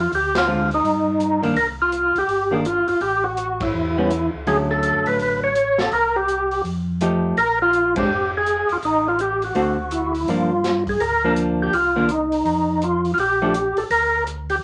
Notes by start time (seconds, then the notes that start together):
0.00 F4
0.12 D2 G4, open hi-hat
0.35 F4, snare, ride
0.47 D3 G#3 C4 F4
0.71 D#4, open hi-hat
0.83 G2, open hi-hat
1.20 closed hi-hat
1.43 D#3 A#3 D4, open hi-hat
1.55 C2 A#4, open hi-hat
1.82 F4
1.92 closed hi-hat
2.15 C2 G4, open hi-hat
2.28 G1, open hi-hat
2.51 D#3 A#3 D4 G#4
2.65 F4, closed hi-hat
2.88 G1 F4, open hi-hat
3.01 A1 G4, open hi-hat
3.24 F#4
3.37 closed hi-hat
3.60 E4, kick, ride
3.74 E2
3.98 G3 B3 C#4
4.10 closed hi-hat
4.34 C#2
4.47 D2 D3 F#3 A3 C#4 G#4, open hi-hat
4.71 A4
4.83 closed hi-hat
4.95 F#2
5.06 A2 B4, open hi-hat
5.19 A1, open hi-hat
5.44 C#5
5.55 closed hi-hat
5.78 A4, snare
5.91 C2 A#4, open hi-hat
6.16 G4
6.28 closed hi-hat
6.51 open hi-hat
6.64 F2, open hi-hat
7.01 F3 A3 D#4 G4, closed hi-hat
7.37 A#1 A#4, open hi-hat
7.62 F4
7.73 closed hi-hat
7.96 G#3 C4 D4 G4, kick, ride
8.08 F1
8.37 G#4
8.46 closed hi-hat
8.69 F1 F4, open hi-hat
8.83 A1 D#4, open hi-hat
9.08 F4
9.19 G4, closed hi-hat
9.42 F#4, open hi-hat
9.55 D2 D3 A3 C4 F#4, open hi-hat
9.91 E4, closed hi-hat
10.15 open hi-hat
10.28 G2 F3 A#3 D4 F4, open hi-hat
10.64 snare, closed hi-hat
10.87 G#4, kick, open hi-hat
10.99 D2 A#4, open hi-hat
11.24 F3 A#3 D4
11.36 closed hi-hat
11.62 G4
11.73 C2 F4, open hi-hat
11.96 D#3 A#3 D4
12.09 D#4, closed hi-hat
12.32 open hi-hat
12.45 F2, open hi-hat
12.82 F4, closed hi-hat
13.05 open hi-hat
13.14 A#1 F4, open hi-hat
13.20 G4
13.42 F3 A3 D4
13.54 closed hi-hat
13.77 A#1 A4, open hi-hat
13.90 D2 A#4, open hi-hat
14.27 closed hi-hat
14.50 G4, open hi-hat